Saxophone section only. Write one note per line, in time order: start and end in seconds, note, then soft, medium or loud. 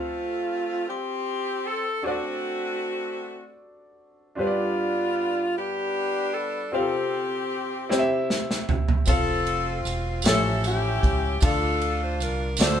0.00 0.84 A3 medium
0.00 0.84 C4 medium
0.00 0.85 F4 medium
0.88 2.01 C4 medium
0.88 1.66 G4 loud
1.67 2.05 A4 loud
2.05 3.57 A3 medium
2.05 3.57 C4 medium
2.05 3.61 F#4 medium
4.40 5.52 B3 medium
4.40 5.52 D4 medium
4.40 5.53 F4 medium
5.57 6.70 B3 medium
5.57 6.70 D4 medium
5.57 6.35 G4 loud
6.34 6.73 A4 loud
6.73 8.26 C4 medium
6.73 8.29 G4 medium
9.08 10.21 C4 medium
9.08 10.21 F4 medium
9.08 9.82 A4 loud
10.26 10.64 C#4 medium
10.26 10.64 E4 medium
10.26 10.62 A4 loud
10.66 11.39 C#4 medium
10.66 11.39 E4 medium
10.66 11.40 G4 loud
11.44 12.57 D4 medium
11.44 12.56 F4 medium
11.44 12.02 A4 loud
12.03 12.20 C5 medium
12.23 12.60 A#4 loud
12.62 12.80 F#4 medium
12.62 12.80 A4 medium
12.62 12.80 C5 loud